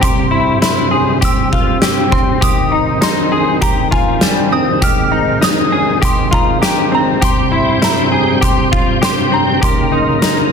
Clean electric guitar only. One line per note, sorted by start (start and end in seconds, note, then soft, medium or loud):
0.01 0.31 G4 medium
0.31 0.61 E4 medium
0.62 0.91 E4 medium
0.91 1.21 G#4 medium
1.21 1.52 G4 medium
1.52 1.81 F4 medium
1.82 2.12 G4 medium
2.11 2.42 C4 medium
2.41 2.72 G4 medium
2.72 3.00 D#4 medium
3.01 3.32 D#4 medium
3.32 3.61 G#4 medium
3.61 3.91 G4 medium
3.91 4.22 F4 medium
4.22 4.52 G3 medium
4.52 4.82 C4 medium
4.82 5.12 G4 medium
5.12 5.40 D#4 medium
5.41 5.72 D#4 medium
5.72 6.01 G#4 medium
6.02 6.31 G4 medium
6.31 6.61 F4 medium
6.62 6.92 G4 medium
6.92 7.22 C4 medium
7.21 7.51 G4 medium
7.52 7.81 E4 medium
7.82 8.11 E4 medium
8.12 8.41 G#4 medium
8.41 8.71 G4 medium
8.72 9.01 F4 medium
9.02 9.32 G4 medium
9.32 9.62 C4 medium
9.62 9.92 G4 medium
9.92 10.21 D#4 medium
10.22 10.52 D#4 medium